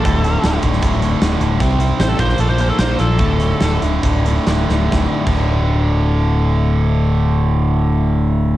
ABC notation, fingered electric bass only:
X:1
M:4/4
L:1/16
Q:1/4=140
K:Dm
V:1 name="Fingered electric bass" clef=bass
D,,,4 D,,,2 D,,,2 D,,,4 D,,,2 D,,,2 | C,,4 A,,,2 B,,,2 B,,,4 B,,,2 B,,,2 | D,,,4 D,,,2 D,,,2 D,,,4 D,,,2 D,,,2 | D,,, z2 D,,,12- D,,,- |
D,,,16 |]